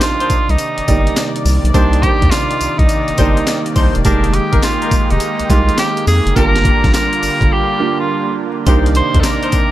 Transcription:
Already playing: C3 D#3 G3 A#3 D4 D#4 D5
0.01 F4, snare, clap, closed hi-hat, tambourine
0.20 D4 D#4 A#4 C5, closed hi-hat
0.30 C2, kick, closed hi-hat, tambourine
0.49 C2 D#4, closed hi-hat
0.58 closed hi-hat, tambourine
0.78 G1, closed hi-hat
0.88 G1 G3 A#3 D#4 D5, kick, closed hi-hat, tambourine
1.07 closed hi-hat
1.17 snare, clap, closed hi-hat, tambourine
1.36 closed hi-hat
1.45 C2, open hi-hat, tambourine
1.64 B1, closed hi-hat
1.74 C2 G3 A#3 D4 D#4 A#4 C5, kick, closed hi-hat, tambourine
1.93 closed hi-hat
2.02 D4 D#4 G4 A#4 C5, kick, closed hi-hat
2.22 D#2, kick, closed hi-hat
2.31 F4, snare, clap, closed hi-hat, tambourine
2.51 closed hi-hat
2.61 C2, closed hi-hat, tambourine
2.78 C2 D#4, kick, closed hi-hat
2.89 closed hi-hat, tambourine
3.08 G1, closed hi-hat
3.18 G1 G3 A#3 D4 D#4 A#4 C5 D5, kick, closed hi-hat, tambourine
3.37 closed hi-hat
3.47 snare, clap, closed hi-hat, tambourine
3.66 closed hi-hat
3.75 C2 D4 D#4 A#4 C5, kick, open hi-hat, tambourine
3.95 E1, closed hi-hat
4.04 F1 G#3 A#3 D4 D#4 G4 G#4 A#4, kick, closed hi-hat, tambourine
4.24 closed hi-hat
4.34 G4, closed hi-hat
4.52 G1 D#4 G4 G#4 A#4, kick, closed hi-hat
4.63 F4, snare, clap, closed hi-hat, tambourine
4.81 D#4 G4 G#4 A#4, closed hi-hat
4.91 F1, kick, closed hi-hat, tambourine
5.10 F1 D#4, closed hi-hat
5.20 closed hi-hat, tambourine
5.39 C2, closed hi-hat
5.50 C2 G#3 A#3 D#4 F4 G4, kick, closed hi-hat, tambourine
5.69 closed hi-hat
5.78 G4, snare, clap, closed hi-hat, tambourine
5.97 closed hi-hat
6.07 F2 G#4, open hi-hat, tambourine
6.26 F#1, closed hi-hat
6.35 G1 D3 G3 A#3 D4 F4 G4 A#4, kick, closed hi-hat, tambourine
6.56 snare, closed hi-hat
6.64 D4 F4 G4 A#4, kick, closed hi-hat
6.84 A#1, kick, snare, closed hi-hat
6.94 A#4, snare, clap, closed hi-hat, tambourine
7.13 closed hi-hat
7.22 G1, open hi-hat, tambourine
7.41 G1, kick, closed hi-hat
7.53 G4
7.80 A#3 D4 F4 G4
8.00 F4
8.66 C2 C3 D#3 A#3 D4 D#4 G4 A#4 C5 D5, kick, closed hi-hat, tambourine
8.86 closed hi-hat
8.95 C5, closed hi-hat
9.14 D#2 D4 D#4 A#4 C5, kick, closed hi-hat
9.20 A4, snare, closed hi-hat, tambourine
9.24 A#4, clap
9.43 D4 D#4 A#4 C5, closed hi-hat
9.52 C2, kick, closed hi-hat, tambourine

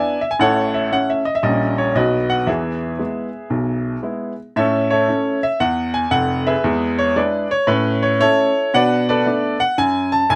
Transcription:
Already playing: B3 D4 E4 D5 E5 G#5
0.21 E5
0.31 G#5
0.39 A1 A2 A4 C#5 F#5
0.74 E5
0.92 A3 C#4 E4 F#5
1.10 E5
1.25 D#5
1.35 E5
1.43 A#1 A#2 G3 C#4 E4 D#5
1.78 C#5
1.95 B1 B2 F#3 B3 F#4 B4 D#5
2.30 F#5
2.46 E2 E3 G#4 B4 E5
2.99 G#3 B3 E4
3.50 B1 B2
4.03 G#3 B3 E4
4.56 A2 C#4 A4 C#5 E5
4.90 E4 A4 C#5
5.08 A3 C#4 E4
5.43 E5
5.60 E2 F#5
5.94 G#5
6.11 F1 F2 F#5
6.47 G#4 B4 E5
6.64 E2 G#3
6.99 C#5
7.16 G#3 D4 E4 G#4 B4 D5
7.51 C#5
7.67 A2 C#4 B4
8.03 C#5
8.20 A3 C#4 E4 A4 C#5
8.74 B2 D4 B4 D5 F#5
9.09 A4 B4 D5
9.26 A3 B3 D4
9.60 F#5
9.78 F#2 G#5
10.12 A5
10.30 F1 F2 G#5

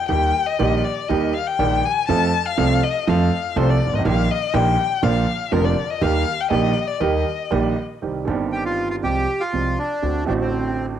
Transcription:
0.09 D#2 D#3 G3 A#3 G4 G5
0.46 D#5
0.59 A#1 A#2 D#3 G3 A#3 G4
0.84 D5
1.09 D#2 D#3 G3 A#3 G4 D#5
1.34 F5
1.47 G5
1.59 A#1 A#2 D#3 G3 A#3 G4
1.85 G#5
2.08 F2 F3 A3 C4 A4 A5
2.46 F5
2.57 C2 C3 F3 A3 C4 A4
2.84 D#5
3.07 F2 F3 A3 C4 A4 F5
3.56 C2 C3 F3 A3 C4 A4 C5
3.70 D5
3.87 G1
3.93 G#1 D#5
3.99 A1
4.05 A#1 A#2 D#3 G3 A#3 G4 F5
4.31 D#5
4.53 A#1 A#2 D#3 G3 A#3 G4 G5
5.02 A#1 A#2 D3 F3 A#3 F4 F5
5.52 F1 F2 D3 F3 A#3 F4 A#4
5.65 D5
5.90 D#5
6.01 D#2 D#3 G3 A#3 G4 F5
6.40 G5
6.50 A#1 A#2 D#3 G3 A#3 G4 D#5
6.87 D5
7.00 D#2 D#3 G3 A#3 G4 D#5
7.51 A#1 A#2 D#3 G3 A#3 G4
8.02 C2 C3 D#3 G3 C4 G4
8.25 G1 G2 D#3 G3 C4
8.29 G4
8.52 G4
8.65 F4
8.90 F4
9.02 C2 C3 F3 G#3 C4 G4
9.40 F4
9.53 C2 C3 F3 G#3 C4 G4
9.79 D4
10.02 D2 D3 A3 C4 F#4
10.25 A1 A2 D3 A3 C4 D4 F#4
10.41 C4

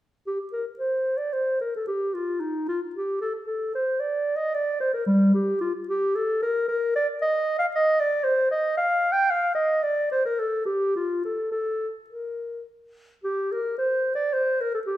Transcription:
0.27 G4
0.53 A#4
0.79 C5
1.17 D5
1.33 C5
1.61 A#4
1.76 A4
1.87 G4
2.14 F4
2.40 D#4
2.68 F4
2.95 G4
3.21 A4
3.47 A4
3.75 C5
4.00 D5
4.36 D#5
4.54 D5
4.80 C5
4.94 A#4
5.06 G3
5.34 G4
5.61 F4
5.88 G4
6.16 A4
6.42 A#4
6.68 A#4
6.96 D5
7.22 D#5
7.59 F5
7.75 D#5
8.00 D5
8.24 C5
8.51 D#5
8.77 F5
9.12 G5
9.30 F5
9.55 D#5
9.83 D5
10.11 C5
10.25 A#4
10.39 A4
10.65 G4
10.96 F4
11.25 A4
11.52 A4
12.10 A#4
13.24 G4
13.52 A#4
13.78 C5
14.15 D5
14.33 C5
14.60 A#4
14.74 A4
14.87 G4

